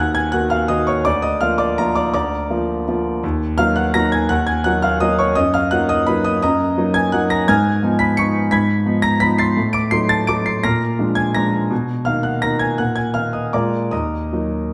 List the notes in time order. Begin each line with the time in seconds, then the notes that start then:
Already playing: D#2 F#5 F#6
0.15 G#5 G#6
0.32 D#3 A#3 F#4 F#5 F#6
0.50 F5 F6
0.68 D#3 A#3 F#4 D#5 D#6
0.87 C#5 C#6
1.05 D2 D5 D6
1.22 D#5 D#6
1.41 F3 A#3 F4 F5 F6
1.58 D5 D6
1.78 F3 A#3 F4 A#4 A#5
1.95 D5 D6
2.14 D2 D5 A#5 D6
2.50 F3 A#3 F4
2.88 F3 A#3 F4
3.23 D#2
3.58 F#3 A#3 D#4 F5 F6
3.76 F#5 F#6
3.94 F#3 A#3 D#4 A#5 A#6
4.12 G#5 G#6
4.29 D#2 F#5 F#6
4.47 G#5 G#6
4.64 F#3 A#3 D#4 F#5 F#6
4.82 F5 F6
5.00 F#3 A#3 D#4 D#5 D#6
5.19 C#5 C#6
5.35 F#2 D#5 D#6
5.54 F5 F6
5.71 F#3 A#3 D#4 F#5 F#6
5.89 D#5 D#6
6.07 F#3 A#3 D#4 B4 B5
6.24 D#5 D#6
6.42 F#2 D#5 A#5 D#6
6.78 F#3 A#3 D#4
6.94 G#5 G#6
7.12 F#3 A#3 D#4 F#5 F#6
7.30 A#5 A#6
7.48 G#2 G#5 F6 G#6
7.83 F3 B3 D#4
7.99 B5 B6
8.17 F3 B3 D#4 C#6 C#7
8.51 G#2 B5 G#6 B6
8.85 F3 B3 D#4
9.02 A#5 A#6
9.20 F3 B3 D#4 B5 B6
9.38 C6 A6 C7
9.57 A2
9.73 D6 D7
9.91 F#3 A3 D#4 C6 C7
10.09 A5 A6
10.27 F#3 A3 D#4 D6 D7
10.46 C6 C7
10.64 A#2 A#5 F6 A#6
10.99 F3 G#3 D4
11.15 G#5 G#6
11.35 F3 G#3 D4 A#5 A#6
11.71 B2
12.05 D#3 A#3 D#4 F5 F6
12.23 F#5 F#6
12.42 D#3 A#3 D#4 A#5 A#6
12.59 G#5 G#6
12.78 A#2 F#5 F#6
12.96 G#5 G#6
13.14 D#3 A#3 D#4 F5 F6
13.33 D#5 D#6
13.53 A#2 G#3 A#3 F4 D5 A#5 D6
13.91 D#2 D#5 A#5 D#6
14.33 F#3 A#3 D#4